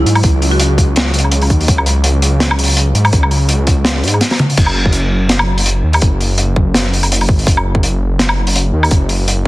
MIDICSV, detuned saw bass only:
0, 0, Header, 1, 2, 480
1, 0, Start_track
1, 0, Tempo, 361446
1, 315, Time_signature, 4, 2, 24, 8
1, 12587, End_track
2, 0, Start_track
2, 0, Title_t, "Detuned saw bass"
2, 0, Program_c, 0, 39
2, 74, Note_on_c, 0, 44, 81
2, 297, Note_off_c, 0, 44, 0
2, 315, Note_on_c, 0, 37, 103
2, 1261, Note_off_c, 0, 37, 0
2, 1273, Note_on_c, 0, 37, 96
2, 1994, Note_on_c, 0, 39, 86
2, 2014, Note_off_c, 0, 37, 0
2, 2217, Note_off_c, 0, 39, 0
2, 2235, Note_on_c, 0, 37, 103
2, 3901, Note_off_c, 0, 37, 0
2, 3910, Note_on_c, 0, 44, 81
2, 4135, Note_off_c, 0, 44, 0
2, 4157, Note_on_c, 0, 37, 100
2, 5350, Note_on_c, 0, 44, 73
2, 5370, Note_off_c, 0, 37, 0
2, 5592, Note_off_c, 0, 44, 0
2, 6077, Note_on_c, 0, 30, 97
2, 7742, Note_off_c, 0, 30, 0
2, 7750, Note_on_c, 0, 39, 85
2, 7975, Note_off_c, 0, 39, 0
2, 7994, Note_on_c, 0, 30, 99
2, 8940, Note_off_c, 0, 30, 0
2, 8953, Note_on_c, 0, 30, 96
2, 9677, Note_on_c, 0, 32, 92
2, 9697, Note_off_c, 0, 30, 0
2, 9899, Note_off_c, 0, 32, 0
2, 9917, Note_on_c, 0, 30, 96
2, 11582, Note_off_c, 0, 30, 0
2, 11594, Note_on_c, 0, 39, 86
2, 11817, Note_off_c, 0, 39, 0
2, 11836, Note_on_c, 0, 30, 103
2, 12587, Note_off_c, 0, 30, 0
2, 12587, End_track
0, 0, End_of_file